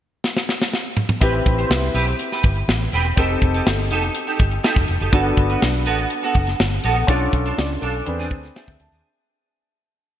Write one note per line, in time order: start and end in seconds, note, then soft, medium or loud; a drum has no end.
0.24 snare medium
0.37 snare medium
0.49 snare medium
0.62 snare medium
0.73 snare medium
0.97 mid tom medium
1.09 mid tom medium
1.21 1.39 A1 medium
1.21 3.13 C4 medium
1.21 1.41 C4 medium
1.21 3.13 E4 medium
1.21 3.13 G4 medium
1.21 1.33 G4 medium
1.21 3.14 B4 medium
1.21 1.33 B4 medium
1.21 kick loud
1.21 closed hi-hat loud
1.34 muted clean electric guitar stroke soft
1.34 closed hi-hat soft
1.46 1.64 A1 medium
1.46 muted clean electric guitar stroke soft
1.46 kick medium
1.46 closed hi-hat medium
1.58 1.69 C4 soft
1.58 1.69 G4 soft
1.58 1.71 C5 medium
1.58 closed hi-hat soft
1.70 1.88 C2 medium
1.70 muted clean electric guitar stroke soft
1.70 snare loud
1.82 muted clean electric guitar stroke soft
1.94 2.12 B1 medium
1.94 2.14 C4 medium
1.94 2.07 G4 medium
1.94 2.06 B4 medium
1.94 closed hi-hat medium
2.08 muted clean electric guitar stroke soft
2.08 closed hi-hat soft
2.19 muted clean electric guitar stroke soft
2.19 closed hi-hat medium
2.32 2.43 C4 soft
2.32 2.44 G4 medium
2.32 2.44 B4 medium
2.32 snare soft
2.43 2.62 G1 medium
2.43 muted clean electric guitar stroke soft
2.43 kick medium
2.43 closed hi-hat medium
2.56 muted clean electric guitar stroke soft
2.56 closed hi-hat soft
2.68 2.86 A1 medium
2.68 snare medium
2.81 muted clean electric guitar stroke soft
2.92 3.11 E1 medium
2.92 3.12 C4 medium
2.92 3.05 G4 medium
2.92 3.04 B4 medium
2.92 closed hi-hat medium
3.05 muted clean electric guitar stroke soft
3.05 closed hi-hat soft
3.16 3.35 F1 loud
3.16 5.08 C4 medium
3.16 5.09 D#4 medium
3.16 3.37 D#4 medium
3.16 5.09 G4 medium
3.16 3.29 G4 medium
3.16 5.09 A4 medium
3.16 3.29 A4 medium
3.16 kick loud
3.16 closed hi-hat loud
3.30 muted clean electric guitar stroke medium
3.42 3.59 F1 medium
3.42 muted clean electric guitar stroke soft
3.42 kick medium
3.42 closed hi-hat medium
3.54 3.66 D#4 soft
3.54 3.66 G4 soft
3.54 3.67 A4 medium
3.54 closed hi-hat medium
3.66 3.91 G1 medium
3.66 muted clean electric guitar stroke soft
3.66 snare loud
3.79 muted clean electric guitar stroke soft
3.91 4.08 F1 medium
3.91 4.10 D#4 medium
3.91 4.03 G4 medium
3.91 4.02 A4 medium
3.91 closed hi-hat medium
4.03 muted clean electric guitar stroke soft
4.03 closed hi-hat soft
4.15 muted clean electric guitar stroke soft
4.15 closed hi-hat medium
4.27 4.39 D#4 medium
4.27 4.39 G4 medium
4.27 4.39 A4 medium
4.27 closed hi-hat soft
4.39 4.57 G1 medium
4.39 muted clean electric guitar stroke soft
4.39 kick medium
4.39 closed hi-hat medium
4.51 muted clean electric guitar stroke soft
4.51 closed hi-hat soft
4.64 4.83 D#4 medium
4.64 4.76 G4 medium
4.64 4.75 A4 medium
4.64 snare medium
4.76 4.85 F1 medium
4.76 muted clean electric guitar stroke soft
4.76 kick medium
4.88 4.97 F1 medium
4.88 muted clean electric guitar stroke soft
4.88 closed hi-hat medium
5.00 5.10 F#1 medium
5.00 5.12 D#4 soft
5.00 5.13 G4 soft
5.00 5.12 A4 medium
5.00 closed hi-hat soft
5.12 5.30 G1 loud
5.12 7.04 B3 medium
5.12 5.32 B3 medium
5.12 7.04 D4 medium
5.12 5.25 F#4 medium
5.12 7.05 F#4 medium
5.12 5.24 A4 medium
5.12 7.05 A4 medium
5.12 kick loud
5.12 closed hi-hat loud
5.25 muted clean electric guitar stroke soft
5.37 5.55 G1 loud
5.37 muted clean electric guitar stroke soft
5.37 kick medium
5.37 closed hi-hat medium
5.50 5.61 B3 soft
5.50 5.61 F#4 soft
5.50 5.62 B4 soft
5.50 closed hi-hat soft
5.62 5.87 B1 medium
5.62 muted clean electric guitar stroke soft
5.62 snare loud
5.73 muted clean electric guitar stroke soft
5.73 closed hi-hat soft
5.86 6.04 A1 medium
5.86 6.06 B3 medium
5.86 5.98 F#4 medium
5.86 5.97 A4 medium
5.86 closed hi-hat medium
5.99 muted clean electric guitar stroke soft
5.99 closed hi-hat soft
6.10 muted clean electric guitar stroke soft
6.10 closed hi-hat medium
6.23 6.34 B3 medium
6.23 6.35 F#4 medium
6.23 6.35 A4 medium
6.35 6.53 F#1 medium
6.35 muted clean electric guitar stroke soft
6.35 kick medium
6.35 closed hi-hat medium
6.47 muted clean electric guitar stroke soft
6.47 snare soft
6.47 closed hi-hat soft
6.60 6.78 G1 medium
6.60 snare loud
6.72 muted clean electric guitar stroke soft
6.84 7.02 A#1 medium
6.84 7.04 B3 medium
6.84 6.96 F#4 medium
6.84 6.95 A4 loud
6.84 closed hi-hat medium
6.96 muted clean electric guitar stroke soft
6.96 closed hi-hat soft
7.07 7.26 B1 loud
7.07 8.04 C#4 medium
7.07 8.04 D4 medium
7.07 7.28 D4 medium
7.07 8.05 F4 medium
7.07 7.21 F4 medium
7.07 7.57 A4 medium
7.07 7.20 A4 medium
7.07 kick loud
7.07 closed hi-hat loud
7.21 muted clean electric guitar stroke soft
7.33 7.51 B1 medium
7.33 muted clean electric guitar stroke soft
7.33 kick medium
7.33 closed hi-hat medium
7.46 7.57 D4 soft
7.46 7.57 F4 medium
7.46 7.58 A4 medium
7.46 closed hi-hat medium
7.57 7.76 C#2 medium
7.57 7.81 D5 medium
7.57 muted clean electric guitar stroke soft
7.57 snare loud
7.70 muted clean electric guitar stroke soft
7.81 8.00 B1 medium
7.81 8.02 D4 medium
7.81 7.94 F4 medium
7.81 8.28 A4 medium
7.81 7.93 A4 medium
7.81 closed hi-hat medium
7.95 muted clean electric guitar stroke soft
7.95 closed hi-hat soft
8.05 8.31 E2 loud
8.05 9.02 C4 medium
8.05 9.02 D4 medium
8.05 9.03 G#4 medium
8.05 9.03 B4 medium
8.05 muted clean electric guitar stroke soft
8.05 closed hi-hat medium
8.19 8.30 C4 medium
8.19 8.31 D4 medium
8.19 8.31 G#4 medium
8.19 snare soft
8.31 8.49 D2 medium
8.31 muted clean electric guitar stroke soft
8.31 kick medium
8.31 closed hi-hat medium
8.43 muted clean electric guitar stroke soft
8.43 snare soft
8.43 closed hi-hat soft
8.56 8.75 C4 medium
8.56 8.68 D4 medium
8.56 8.68 G#4 medium
8.56 8.79 E5 medium
8.56 snare loud
8.68 8.77 D2 medium
8.68 muted clean electric guitar stroke soft
8.68 kick medium
8.80 8.89 D2 medium
8.80 9.03 A5 medium
8.80 muted clean electric guitar stroke soft
8.80 closed hi-hat medium
8.92 9.01 D#2 medium
8.92 9.09 C4 soft
8.92 9.08 D4 soft
8.92 9.08 G#4 soft
8.92 closed hi-hat soft